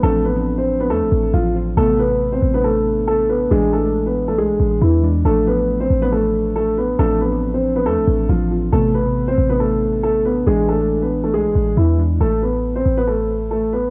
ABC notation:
X:1
M:4/4
L:1/16
Q:1/4=138
K:Am
V:1 name="Grand piano"
[A,A]2 [B,B]3 [Cc]2 [B,B] [A,A]4 [F,F]2 z2 | [A,A]2 [B,B]3 [Cc]2 [B,B] [A,A]4 [A,A]2 [B,B]2 | [^G,^G]2 [A,A]3 [B,B]2 [A,A] [G,G]4 [E,E]2 z2 | [A,A]2 [B,B]3 [Cc]2 [B,B] [A,A]4 [A,A]2 [B,B]2 |
[A,A]2 [B,B]3 [Cc]2 [B,B] [A,A]4 [F,F]2 z2 | [A,A]2 [B,B]3 [Cc]2 [B,B] [A,A]4 [A,A]2 [B,B]2 | [^G,^G]2 [A,A]3 [B,B]2 [A,A] [G,G]4 [E,E]2 z2 | [A,A]2 [B,B]3 [Cc]2 [B,B] [A,A]4 [A,A]2 [B,B]2 |]
V:2 name="Synth keys"
[F,CD]2 z [F,CD]3 z [F,CD]4 z3 [F,CF] z | [C,A,B,]2 z [C,A,B,]3 z [C,A,D]4- [C,A,D] z4 | [E,^G,D]2 z [E,G,D]3 z [E,G,D]4 z3 [E,G,D] z | [F,A,D]2 z [F,A,D]3 z [F,A,D]4- [F,A,D] z4 |
[F,CD]2 z [F,CD]3 z [F,CD]4 z3 [F,CF] z | [C,A,B,]2 z [C,A,B,]3 z [C,A,D]4- [C,A,D] z4 | [E,^G,D]2 z [E,G,D]3 z [E,G,D]4 z3 [E,G,D] z | z16 |]
V:3 name="808-style bass" clef=bass
A,,,8 E,, A,,, A,,,2 A,,,4 | A,,,6 A,,,8- A,,,2 | A,,,8 B,,, A,,, A,,,2 E,,4 | A,,,6 A,,,8- A,,,2 |
A,,,8 E,, A,,, A,,,2 A,,,4 | A,,,6 A,,,8- A,,,2 | A,,,8 B,,, A,,, A,,,2 E,,4 | A,,,6 A,,,8- A,,,2 |]